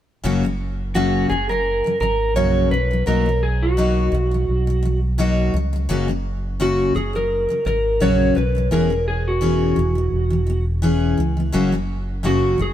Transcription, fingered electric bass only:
0.24 1.26 F#1 medium
1.30 1.81 F#1 medium
2.01 2.36 G#1 medium
2.36 2.68 A#1 medium
2.72 3.04 B1 medium
3.07 4.09 B1 medium
4.12 4.45 B1 medium
4.48 5.50 B1 medium
5.54 5.86 C#2 medium
5.89 6.91 F#1 medium
6.95 7.46 F#1 medium
7.66 7.98 G#1 medium
8.01 8.33 A#1 medium
8.36 8.69 B1 medium
8.71 9.73 E1 medium
9.77 10.10 E1 medium
10.12 11.14 E1 medium
11.18 11.51 C#2 medium
11.54 12.56 F#1 medium
12.59 12.73 F#1 medium

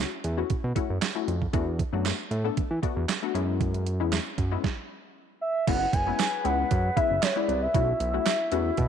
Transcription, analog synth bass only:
0.24 0.43 E2 medium
0.50 0.56 B2 soft
0.64 0.73 B2 loud
0.90 0.99 F#2 medium
1.28 1.47 F2 medium
1.54 1.83 E2 loud
1.93 2.12 F#2 medium
2.31 2.50 A2 loud
2.57 2.63 E3 soft
2.71 2.80 E3 medium
2.96 3.05 E2 medium
3.35 4.01 F#2 loud
4.00 4.19 E2 medium
4.38 4.57 F#2 loud
5.67 5.86 F#1 loud
5.93 6.12 F#1 medium
6.45 6.64 C#2 loud
6.71 6.90 F#2 loud
7.10 7.19 F#1 medium
7.48 7.67 C2 medium
7.74 7.93 B1 loud
8.00 8.19 B1 loud
8.52 8.71 E2 medium
8.78 8.88 B2 loud

